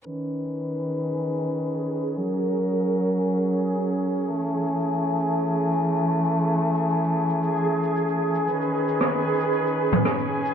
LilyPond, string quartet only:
\new Staff \with { instrumentName = "String quartet" } { \time 4/4 \key b \major \tempo 4 = 114 << { <dis b'>1 | <fis ais'>1 | <e a>1~ | <e a>1 |
<dis b'>1 | } \\ { cis'1~ | cis'1~ | cis'1~ | cis'1 |
cis'1 | } >> }